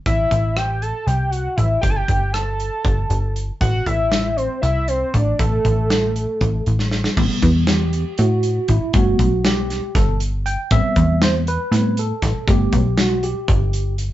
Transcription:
0.06 A1 E5, kick, closed hi-hat
0.31 A1, kick, closed hi-hat
0.56 G5, cross-stick, closed hi-hat
0.82 A5, closed hi-hat
1.06 C2 G5, closed hi-hat
1.30 F#5, closed hi-hat
1.56 A1 E5, kick, closed hi-hat
1.81 G1 G5, kick, closed hi-hat
1.90 A5
1.96 G5
2.08 G1, kick, closed hi-hat
2.33 A5, cross-stick, closed hi-hat
2.60 closed hi-hat
2.85 G1, kick, closed hi-hat
3.10 G1, closed hi-hat
3.36 closed hi-hat
3.61 A1 F#5, kick, closed hi-hat
3.86 A1 E5, kick, closed hi-hat
4.12 snare, closed hi-hat
4.36 C5, closed hi-hat
4.62 C2 E5, closed hi-hat
4.88 C5, closed hi-hat
5.14 A1 D5, kick, closed hi-hat
5.39 A1 A4, kick, closed hi-hat
5.65 A1, kick, closed hi-hat
5.90 snare, closed hi-hat
6.16 closed hi-hat
6.41 A1, kick, closed hi-hat
6.66 A1, closed hi-hat
6.79 snare
6.91 snare
7.04 snare
7.16 A1 C3 G3 B3, kick, crash
7.42 E2, kick, closed hi-hat
7.67 G4, snare, closed hi-hat
7.93 closed hi-hat
8.18 A2 F#4, closed hi-hat
8.43 closed hi-hat
8.68 A1 E4, kick, closed hi-hat
8.93 G1 G3 A3 B3 F#4, kick, closed hi-hat
9.19 B1, kick, closed hi-hat
9.45 G4, snare, closed hi-hat
9.70 snare, closed hi-hat
9.95 G1 A4, kick, snare, closed hi-hat
10.20 closed hi-hat
10.46 G5, closed hi-hat
10.71 A1 G3 B3 C4 E5, kick, closed hi-hat
10.96 E2, kick, closed hi-hat
11.22 C5, snare, closed hi-hat
11.47 B4, closed hi-hat
11.71 A2 G3 B3 C4, snare, closed hi-hat
11.97 A4, closed hi-hat
12.22 A1, kick, snare, closed hi-hat
12.47 G1 G3 A3 B3 G4, kick, closed hi-hat
12.72 B1, kick, closed hi-hat
12.98 F#4, snare, closed hi-hat
13.23 G4, closed hi-hat
13.48 G1, kick, closed hi-hat
13.73 closed hi-hat
13.98 closed hi-hat

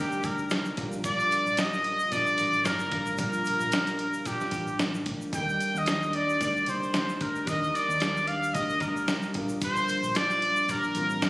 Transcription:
Already playing: D2 D#3 G3 D4 D#4 A#4
0.00 A#3 D4 G4
0.12 shaker
0.23 D2 D4 G4 A#4, kick, closed hi-hat, shaker
0.28 A#3
0.38 shaker
0.50 C2, snare, closed hi-hat, shaker
0.65 shaker
0.76 A#1 D3 F3 G3 A#3 D4 F4 G4, kick, closed hi-hat
0.80 A#2 A#4
0.92 shaker
1.04 D5, kick, closed hi-hat, shaker
1.20 shaker
1.32 closed hi-hat, shaker
1.46 A#1, shaker
1.57 F3 A#3 G4 D#5, snare, closed hi-hat, shaker
1.74 shaker
1.84 closed hi-hat
1.99 shaker
2.09 A#1 A#2 D3 F3 D5, kick, closed hi-hat, shaker
2.13 A#3 D4 G4
2.27 shaker
2.38 A1, closed hi-hat, shaker
2.53 shaker
2.65 G1 A#4, snare, closed hi-hat, shaker
2.79 shaker
2.89 A1 G3 D4, kick, closed hi-hat
2.93 F4 A#4
3.06 shaker
3.18 A#1 A#2 D3 F3 A#3 D4 G4 A#4, kick, closed hi-hat, shaker
3.33 shaker
3.45 closed hi-hat, shaker
3.60 A#1, shaker
3.71 F3 A#3 D4 G4, snare, closed hi-hat, shaker
3.87 closed hi-hat, shaker
3.99 closed hi-hat
4.13 shaker
4.25 A#1 A#2 D3 F3 A#3 D4 G4, kick, closed hi-hat, shaker
4.41 snare, shaker
4.51 A1 A#3 D4 G4, kick, closed hi-hat, shaker
4.56 F3
4.68 shaker
4.79 A1, snare, closed hi-hat, shaker
4.94 shaker
5.06 D2, kick, closed hi-hat
5.22 shaker
5.30 D#2 D#3 G3 A#3 D#4, kick, closed hi-hat, shaker
5.34 A#3 D4 G4 A4 G5
5.41 A#4
5.49 shaker
5.60 closed hi-hat, shaker
5.74 D#2 D#5, shaker
5.86 G3 A#3 D4 G4, snare, closed hi-hat, shaker
6.03 shaker
6.13 D5, closed hi-hat
6.29 shaker
6.40 D2 D#3 G3 A#3 D4 G4 D5, kick, closed hi-hat, shaker
6.57 shaker
6.66 C2 D4 G4 C5, closed hi-hat, shaker
6.71 A#3
6.83 shaker
6.94 D2, snare, closed hi-hat, shaker
7.09 shaker
7.21 D2 A#4, kick, closed hi-hat
7.35 shaker
7.45 D#2 D#3 G3 D4 D#4 D#5, kick, closed hi-hat, shaker
7.50 A#3 D4 G4 A#4
7.64 shaker
7.75 D5, closed hi-hat, shaker
7.89 D#2, shaker
8.00 snare, closed hi-hat, shaker
8.17 shaker
8.28 F5, closed hi-hat
8.43 shaker
8.54 D2 D#3 G3 A#3 D4 G4 D#5, kick, closed hi-hat, shaker
8.70 shaker
8.80 D2 D4 G4 A#4, kick, closed hi-hat, shaker
8.85 A#3
8.97 shaker
9.07 C2, snare, closed hi-hat, shaker
9.22 shaker
9.33 A#1 G3 A#3 D4 F4 G4, kick, closed hi-hat
9.37 A#2 D3 F3 A#4
9.49 shaker
9.61 C5, kick, closed hi-hat, shaker
9.76 shaker
9.88 closed hi-hat, shaker
10.03 A#1, shaker
10.14 F3 A#3 D4 G4 D5, snare, closed hi-hat, shaker
10.30 shaker
10.42 closed hi-hat
10.56 shaker
10.67 A#1 A#2 D3 F3 A#3 A#4, kick, closed hi-hat, shaker
10.71 D4 G4
10.83 shaker
10.94 A1 G3 C4 F4 A#4, closed hi-hat, shaker
11.02 D4
11.10 shaker
11.22 G1 A#4, snare, closed hi-hat, shaker

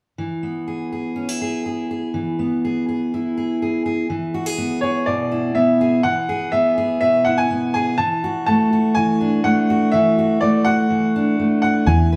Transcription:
0.18 E3
0.43 B3
0.68 G#4
0.92 G#4
1.16 C#4
1.29 E4
1.42 G#4
1.66 G#4
1.91 G#4
2.14 E3
2.39 B3
2.65 G#4
2.89 G#4
3.14 E4
3.38 G#4
3.62 G#4
3.86 G#4
4.10 E3
4.34 F#4
4.46 G#4
4.58 B3
4.81 G#4 C#5
5.06 B2 D5
5.32 E4
5.55 B3 E5
5.81 G#4
6.03 E3 F#5
6.29 G#4
6.52 B3 E5
6.78 G#4
7.01 B2 E5
7.25 E4 F#5
7.38 G#5
7.51 B3
7.74 G#4 G#5
7.98 E3 A5
8.24 F#4
8.46 A3 A5
8.73 F#4
8.95 E3 G#5
9.21 D4
9.44 A3 F#5
9.70 F#4
9.92 E3 E5
10.19 F#4
10.41 A3 D5
10.65 F#4 F#5
10.90 E3
11.16 D4
11.39 A3
11.62 F#4 F#5
11.87 E2 E3 G#5
12.12 B4

